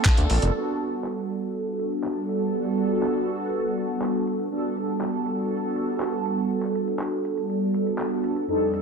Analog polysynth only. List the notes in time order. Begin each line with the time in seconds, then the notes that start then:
Already playing: A#3 C4 D4 F4 A4
0.54 G3 B3 D4 F#4 A4
4.50 G3 B3 D4 F#4 A4
8.47 F2 G3 C4 D4 D#4 A4